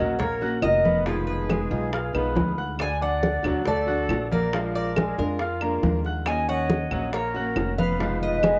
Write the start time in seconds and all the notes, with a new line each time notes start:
Already playing: A#1 F#3 F#4 A#4 D#5
0.00 A#3 C#4 F#4 F#5
0.19 A#3 A#4 C#5 A#5, muted nylon-string guitar stroke, high bongo, high conga, low conga
0.41 A#3 C#4 F#4 F#5 F#6, high bongo, high conga
0.62 F1 D#3 A#3 C#4 F#4 A#4 D#5, high bongo, low bongo, high conga, claves
0.85 B3 B4 B5, high bongo, high conga
1.05 B2 D#3 F3 G#3 D#4 F4 G#4 B4 F5, high bongo, high conga
1.27 G#4 B4, high conga
1.49 G#3 G#4 G#5, high bongo, high conga, claves
1.71 B1 D#3 G#3 D#4 F4, high bongo, high conga
1.92 F4 F5 F6, muted nylon-string guitar stroke, high bongo, high conga
2.13 B1 D#3 G#3 B3 D#4 F4 B4 B5, high bongo, high conga, claves
2.35 D2 G#3 D#4 F4, high bongo, low bongo, high conga
2.58 F#5 F#6, high bongo, high conga
2.78 D3 A3 D4 F#4 D5 G#5, high bongo, high conga, claves
3.01 D4 D5 F#5 D6, high conga
3.23 high bongo, high conga
3.43 D2 F#3 A3 D4 F#4 F#5, high bongo, high conga, low conga, claves
3.64 A3 A4 D5 A5, muted nylon-string guitar stroke, high bongo, high conga, low conga
3.86 A3 D4 F#4 F#5 F#6, high bongo, high conga
4.09 A#1 D3 A3 D4 F#4, high bongo, low bongo, high conga, claves
4.31 A#3 A#4 D5 A#5, high bongo, high conga
4.53 F3 G#3 D4 F4 F5, high bongo, high conga
4.75 A#4 D5, high conga
4.96 G#3 G#4 G#5, high bongo, high conga, claves
5.18 F2 G#3 D4 F4 A#4, high bongo, high conga
5.39 F4 F5 F6, muted nylon-string guitar stroke, high bongo, high conga
5.61 G#3 A#3 D4 F4 A#4 A#5, high bongo, high conga, claves
5.83 D#2 F3 G#3 D4 F4, high bongo, low bongo, high conga
6.05 F#5 F#6, high bongo, high conga
6.25 D#3 A#3 C#4 F#4 D#5 G#5, high bongo, high conga, claves
6.48 C#4 C#5 D#5 F#5 C#6, high conga
6.70 high bongo, high conga
6.91 A#1 F#3 A#3 C#4 F#4 F#5, high bongo, high conga, low conga, claves
7.13 A#3 A#4 C#5 A#5, muted nylon-string guitar stroke, high bongo, high conga
7.34 A#3 C#4 F#4 F#5 F#6, high bongo, high conga
7.56 F1 D#3 A#3 C#4 F#4, high bongo, low bongo, high conga, claves
7.78 B3 B4 F5 B5, high bongo, high conga
7.99 B2 D#3 F3 G#3 D#4 F4 F5, high bongo, high conga
8.22 B4 D#5, high conga
8.43 G#3 G#4 G#5, high bongo, high conga, claves